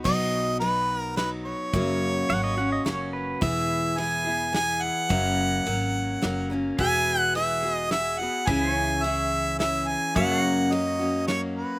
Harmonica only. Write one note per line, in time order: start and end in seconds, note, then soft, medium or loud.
0.05 0.57 D#5 loud
0.60 0.98 B4 medium
0.98 1.13 A#4 medium
1.17 1.30 B4 medium
1.45 3.10 C#5 medium
3.42 4.00 E5 medium
3.99 4.54 G#5 medium
4.55 4.85 G#5 loud
4.83 6.51 F#5 medium
6.79 7.20 G#5 loud
7.20 7.31 F#5 loud
7.36 7.74 E5 medium
7.74 7.88 D#5 medium
7.92 8.20 E5 loud
8.19 8.49 F#5 medium
8.47 9.05 G#5 medium
9.03 9.59 E5 medium
9.59 9.90 E5 medium
9.88 10.16 G#5 medium
10.16 10.74 F#5 loud
10.72 11.27 D#5 medium
11.28 11.40 C#5 medium
11.56 11.79 B4 medium